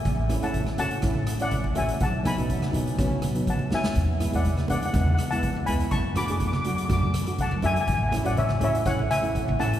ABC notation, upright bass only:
X:1
M:4/4
L:1/16
Q:1/4=123
K:A
V:1 name="Upright bass" clef=bass
A,,,3 A,,,3 A,,2 A,,,2 z3 A,,, A,,, z | B,,,3 B,,,3 B,,2 B,,,2 A,,2 G,,2 F,,2 | E,,3 E,,3 E,2 E,,2 z3 E,, C,, z | F,,3 F,,3 F,2 F,,2 z3 F,, F,, z |
A,,,3 A,,,3 A,,2 A,,,2 z3 A,,, A,,, z |]